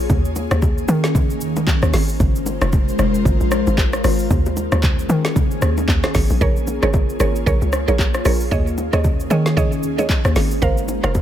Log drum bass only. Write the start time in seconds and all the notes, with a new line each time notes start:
0.10 D#2
0.51 D#2
0.89 D#3
1.41 D#2
1.83 D#2
1.94 G#1
2.20 G#1
2.62 F1
2.99 F1
3.25 G#1
3.41 A#1
3.67 G#1
4.04 G#1
4.31 D#2
4.72 D#2
5.10 D#3
5.62 D#2
5.88 D#2
6.15 G#1
6.30 A#1
6.41 A#1
6.83 G#1
7.20 G#1
7.46 A#1
7.62 C#2
7.88 A#1
8.26 A#1
8.52 D#2
8.93 D#2
9.31 D#3
9.83 D#2
10.25 D#2
10.36 G#1
10.62 G#1
11.04 F1